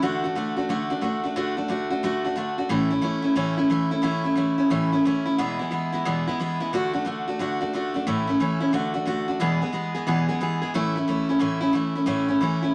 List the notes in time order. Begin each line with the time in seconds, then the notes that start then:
0.02 D3 A3 D4 F#4
0.24 A3 D4 F#4
0.35 D3 A3 D4 F#4
0.57 A3 D4 F#4
0.69 D3 A3 D4 F#4
0.90 A3 D4 F#4
1.01 D3 A3 D4 F#4
1.24 A3 D4 F#4
1.36 D3 A3 D4 F#4
1.57 A3 D4 F#4
1.68 D3 A3 D4 F#4
1.90 A3 D4 F#4
2.03 D3 A3 D4 F#4
2.24 A3 D4 F#4
2.36 D3 A3 D4 F#4
2.58 A3 D4 F#4
2.69 A2 E3 A3 C#4 E4
2.90 A3 C#4 E4
3.02 E3 A3 C#4 E4
3.22 A3 C#4 E4
3.35 A2 E3 A3 C#4 E4
3.57 A3 C#4 E4
3.70 E3 A3 C#4 E4
3.91 A3 C#4 E4
4.02 A2 E3 A3 C#4 E4
4.24 A3 C#4 E4
4.35 E3 A3 C#4 E4
4.58 A3 C#4 E4
4.70 A2 E3 A3 C#4 E4
4.92 A3 C#4 E4
5.05 E3 A3 C#4 E4
5.25 A3 C#4 E4
5.38 E2 B2 E3 G#3 B3 E4
5.59 E3 G#3 B3 E4
5.71 E3 G#3 B3 E4
5.92 E3 G#3 B3 E4
6.05 E2 B2 E3 G#3 B3 E4
6.27 E3 G#3 B3 E4
6.39 E3 G#3 B3 E4
6.60 E3 G#3 B3 E4
6.73 D3 A3 D4 F#4
6.93 A3 D4 F#4
7.05 D3 A3 D4 F#4
7.28 A3 D4 F#4
7.39 D3 A3 D4 F#4
7.61 A3 D4 F#4
7.73 D3 A3 D4 F#4
7.94 A3 D4 F#4
8.07 A2 E3 A3 C#4 E4
8.27 A3 C#4 E4
8.40 E3 A3 C#4 E4
8.60 A3 C#4 E4
8.73 D3 A3 D4 F#4
8.94 A3 D4 F#4
9.05 D3 A3 D4 F#4
9.28 A3 D4 F#4
9.40 E2 B2 E3 G#3 B3 G#4
9.61 E3 G#3 B3 G#4
9.72 E3 G#3 B3 G#4
9.95 E3 G#3 B3 G#4
10.07 E2 B2 E3 G#3 B3 G#4
10.28 E3 G#3 B3 G#4
10.41 E3 G#3 B3 G#4
10.62 E3 G#3 B3 G#4
10.74 A2 E3 A3 C#4 E4
10.96 A3 C#4 E4
11.08 E3 A3 C#4 E4
11.29 A3 C#4 E4
11.39 A2 E3 A3 C#4 E4
11.61 A3 C#4 E4
11.73 E3 A3 C#4 E4
11.95 A3 C#4 E4
12.06 A2 E3 A3 C#4 E4
12.28 A3 C#4 E4
12.41 E3 A3 C#4 E4
12.62 A3 C#4 E4